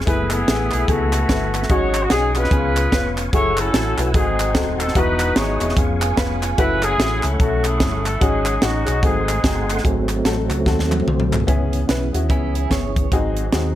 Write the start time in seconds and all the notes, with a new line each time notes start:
Already playing: G#5
0.01 snare
0.06 F#1 A3 B3 E4 G#4 B4 E5 B5, kick, closed hi-hat
0.30 B3 E4 G#4, clap, closed hi-hat
0.47 A1 A3 B3 E4 G#4, snare, closed hi-hat
0.71 B1 A3 B3 E4 G#4, clap, closed hi-hat
0.88 C#2 A3 B3 E4 F#4 G#4, kick, closed hi-hat
1.13 clap, closed hi-hat
1.28 G1 A3 B3 E4 B4, kick, snare, closed hi-hat
1.54 clap, closed hi-hat
1.63 snare
1.69 G#1 G#2 C#4 D#4 F#4 G#4 C#5 D#5 F#5 C#6, kick, closed hi-hat
1.94 clap, closed hi-hat
2.03 F#4
2.10 B1 C#4 D#4 F#4 G#4, snare, closed hi-hat
2.35 C#4 D#4 F4 F#4 G#4 B4, clap, closed hi-hat
2.44 snare
2.50 C#2 C#3 B3 C#4 F4 G#4 B4 F5 G#5, kick, closed hi-hat
2.76 clap, closed hi-hat
2.92 F1 B3 C#4 F4 B4, kick, snare, closed hi-hat
3.18 clap, closed hi-hat
3.32 F#1 A3 E4 F#4 G#4 A4 C#5 F#5 E6, kick, closed hi-hat
3.57 C#4 E4 A4, clap, closed hi-hat
3.73 A1 A3 E4 F#4 A4, snare, closed hi-hat
3.97 B1 A3 E4 F#4 B4, clap, closed hi-hat
4.13 G#1 G#2 A3 C4 D#4 F#4 G#4 G#5 C6, kick, closed hi-hat
4.39 clap, closed hi-hat
4.54 D#1 A3 C4 F#4 A4, kick, snare, closed hi-hat
4.79 A4, clap, closed hi-hat
4.88 snare
4.95 E1 E3 B3 D#4 E4 F#4 B4 D#5 F#5 D#6, kick, closed hi-hat
5.20 clap, closed hi-hat
5.35 G#1 B3 D#4 E4 F#4 G#4 C#5, snare, closed hi-hat
5.60 E1 B3 D#4 E4 G#4, clap, closed hi-hat
5.69 snare
5.76 F1 B3 C#4 F4 G#4 F5 G#5 C#6, kick, closed hi-hat
6.02 F4 G#4, clap, closed hi-hat
6.16 F1 B3 C#4 F4 G#4 B4, kick, snare, closed hi-hat
6.43 F4 G#4, clap, closed hi-hat
6.57 F#1 A3 C#4 E4 F#4 B4 E5 F#5, kick, closed hi-hat
6.83 C#4 E4 G#4, clap, closed hi-hat
6.98 A1 A3 C#4 E4 F#4, snare, closed hi-hat
7.22 C#2 A3 C#4 E4 A4, clap, closed hi-hat
7.39 B1 A3 C#4 E4 F#4 A4, kick, closed hi-hat
7.65 C#4 E4 G#4, clap, closed hi-hat
7.79 G1 A3 C#4 E4 A4, kick, snare, closed hi-hat
8.06 A4, clap, closed hi-hat
8.20 G#1 G#2 G#3 C#4 D#4 F#4 G#4 D#5, kick, closed hi-hat
8.45 clap, closed hi-hat
8.61 A1 G#3 C#4 D#4 F#4, snare, closed hi-hat
8.85 B1 G#3 C#4 D#4 G#4, clap, closed hi-hat
9.02 G#1 G#2 A3 C4 D#4 F#4 G#4 F#5 G#5 C6, kick, closed hi-hat
9.28 clap, closed hi-hat
9.43 G1 A3 C4 D#4 F#4 G#4, kick, snare, closed hi-hat
9.70 clap, closed hi-hat
9.78 snare
9.83 G#1 G#2 F#3 A3 C4 F#4 G#4, kick, closed hi-hat
10.09 clap, closed hi-hat
10.24 A1 A3 C4 F#4 A4, snare, closed hi-hat
10.50 C#2, clap, closed hi-hat
10.66 D#2 A3 C4 F#4 A4, kick, snare
10.79 snare
10.92 clap, high tom
11.00 high tom
11.07 C2 C5, mid tom
11.20 mid tom
11.31 G#4, clap, floor tom
11.40 floor tom
11.47 C#2 C#3 E3 B3 C#4 E4 G#4, kick, closed hi-hat
11.73 closed hi-hat
11.88 B1 B3 C#4 E4 B4, snare, closed hi-hat
12.13 D#2 B3 C#4 E4 F#4, closed hi-hat
12.29 C#2 B3 C#4 E4 G#4, kick, closed hi-hat
12.55 E4 G#4, closed hi-hat
12.70 G1 B3 C#4 E4 G#4 C#5, kick, snare, closed hi-hat
12.96 kick, closed hi-hat
13.11 G#1 G#2 F#3 C4 D#4 F#4 G#4, kick, closed hi-hat
13.37 closed hi-hat
13.52 D#2 C4 D#4 F#4 G#4, snare, closed hi-hat